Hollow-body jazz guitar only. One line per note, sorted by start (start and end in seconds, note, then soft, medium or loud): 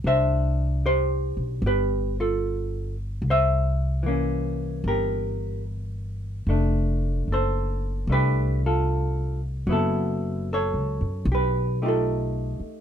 0.07 3.25 D4 medium
0.07 0.81 C5 medium
0.07 0.88 E5 loud
0.86 1.60 G4 medium
0.86 1.60 C5 loud
1.66 2.15 G4 medium
1.66 2.15 B4 medium
2.20 2.95 F4 medium
2.20 2.95 A4 medium
3.30 4.03 C5 medium
3.30 4.10 E5 loud
4.03 6.46 E3 soft
4.03 6.47 A#3 medium
4.08 6.48 C#4 medium
4.88 5.63 G4 medium
4.88 5.63 A#4 medium
6.49 8.08 A3 soft
6.49 8.09 D4 medium
7.32 8.06 A4 medium
7.32 8.12 C5 medium
8.09 9.68 A3 soft
8.09 9.69 D4 soft
8.09 8.61 G4 medium
8.09 8.60 B4 medium
8.66 9.40 F4 medium
8.66 9.40 A4 medium
9.67 11.27 F#3 medium
9.67 11.28 B3 medium
9.67 10.53 E4 medium
9.72 10.52 A4 medium
10.53 11.26 A4 medium
10.53 11.33 C#5 medium
11.32 11.79 G4 medium
11.32 11.83 B4 medium
11.82 12.81 A3 soft
11.82 12.81 D#4 soft
11.82 12.59 F4 medium
11.82 12.81 G4 soft
11.88 12.60 A4 medium